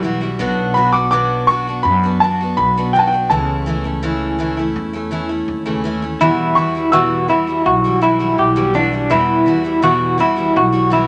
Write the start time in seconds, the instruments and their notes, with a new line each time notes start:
Already playing: upright bass B1
0.03 steel-string acoustic guitar E3 G3 E4 F#4
0.21 steel-string acoustic guitar E3 G3 E4 F#4
0.39 upright bass B1, steel-string acoustic guitar B2 F#3 B3 D4 F#4
0.74 steel-string acoustic guitar F#3 B3 D4, upright piano B5
0.78 steel-string acoustic guitar F#4
0.93 steel-string acoustic guitar B3 D4 F#4, upright piano D6
1.11 steel-string acoustic guitar B2 F#3 B3 D4 F#4, upright piano D6
1.47 steel-string acoustic guitar F#3 B3 D4 F#4, upright piano C#6
1.67 steel-string acoustic guitar B3 D4 F#4
1.83 upright bass F#2, upright piano B5
2.03 steel-string acoustic guitar B3 D4 F#4
2.20 steel-string acoustic guitar F#3 B3 D4, upright piano A5
2.25 steel-string acoustic guitar F#4
2.41 steel-string acoustic guitar B3 D4 F#4
2.57 upright bass B1, upright piano B5
2.77 steel-string acoustic guitar B2 F#3 B3 D4 F#4
2.93 steel-string acoustic guitar F#3 B3 D4 F#4, upright piano G5
2.99 upright piano A5
3.08 upright piano G5
3.12 steel-string acoustic guitar B3 D4 F#4
3.30 upright bass C#2, steel-string acoustic guitar C#3 E3 A3 C#4 E4, upright piano A5
3.66 steel-string acoustic guitar E3 A3 C#4 E4
3.84 steel-string acoustic guitar A3 C#4 E4
4.03 steel-string acoustic guitar C#3 E3 A3 C#4 E4
4.39 steel-string acoustic guitar E3 A3 C#4 E4
4.57 steel-string acoustic guitar A3 C#4 E4
4.76 upright bass E2
4.93 steel-string acoustic guitar A3 C#4 E4
5.11 steel-string acoustic guitar E3 A3 C#4 E4
5.29 steel-string acoustic guitar A3 C#4 E4
5.48 upright bass D#2
5.66 steel-string acoustic guitar C#3 E3 A3 C#4 E4
5.84 steel-string acoustic guitar E3 A3 C#4 E4
6.02 steel-string acoustic guitar A3 C#4 E4
6.20 steel-string acoustic guitar E2 B2 E3 G3 E4 F#4, upright bass E2
6.55 steel-string acoustic guitar E3 G3 E4 F#4, upright piano C#6
6.75 steel-string acoustic guitar E3 G3 E4 F#4
6.92 steel-string acoustic guitar E2 B2 E3 G3 E4 F#4, upright piano E6
7.28 steel-string acoustic guitar E3 G3 E4 F#4
7.47 steel-string acoustic guitar E3 G3 E4 F#4
7.66 upright bass B1, clean electric guitar F#4
7.84 steel-string acoustic guitar E3 G3 E4 F#4
8.01 steel-string acoustic guitar E3 G3 E4 F#4
8.19 steel-string acoustic guitar E3 G3 E4 F#4
8.38 upright bass B1, clean electric guitar G4
8.56 steel-string acoustic guitar E2 B2 E3 G3 E4 F#4
8.74 steel-string acoustic guitar E3 G3 E4 F#4, clean electric guitar D4
8.93 steel-string acoustic guitar E3 G3 E4
9.10 steel-string acoustic guitar E2 B2 E3 G3 E4 F#4, upright bass E2, upright piano B5
9.46 steel-string acoustic guitar E3 G3 E4 F#4
9.64 steel-string acoustic guitar E3 G3 E4 F#4
9.82 steel-string acoustic guitar E2 B2 E3 G3 E4 F#4
10.18 steel-string acoustic guitar E3 G3 E4 F#4
10.36 steel-string acoustic guitar E3 G3 E4 F#4
10.56 upright bass B1, clean electric guitar F#4
10.72 steel-string acoustic guitar E3 G3 E4 F#4
10.90 steel-string acoustic guitar E3 G3 E4 F#4